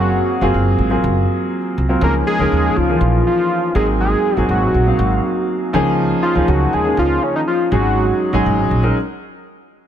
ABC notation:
X:1
M:4/4
L:1/16
Q:1/4=121
K:Db
V:1 name="Analog synth lead"
G4 z12 | B2 A4 F4 F4 A2 | A4 G8- G2 z2 | z2 F2 G2 A2 F2 D E F2 G2- |
G4 z12 |]
V:2 name="Grand piano"
[G,B,CAf]2 z [G,B,CFA]3 z [G,B,CFA]4- [G,B,CFA] z3 [G,B,CFB] | [F,B,DEA]2 z [F,B,DEB]3 z [_F,=F,B,DEA]4- [_F,=F,B,DEA] z2 [G,B,CEA]2- | [G,B,CEA]2 z [G,B,CEA]3 z [G,B,CEf]4- [G,B,CEf] z2 [F,B,DEA]2- | [F,B,DEA]2 z [F,B,DEA]3 z [F,B,DEA]4- [F,B,DEA] z2 [G,A,DEA]2- |
[G,A,DEA]2 z [G,A,DEA]3 z [G,A,DEB] z8 |]
V:3 name="Upright bass" clef=bass
G,,,2 z G,,, G,,,2 A,,,2 G,,,2 z4 C,,2 | D,,2 z D,, E,,2 D,,2 B,,,2 z4 A,,,2- | A,,,2 z A,,, A,,,2 B,,,2 A,,,2 z4 D,,2- | D,,2 z D,, D,,2 E,,2 D,,2 z4 A,,,2- |
A,,,2 z A,,, A,,,2 B,,,2 z8 |]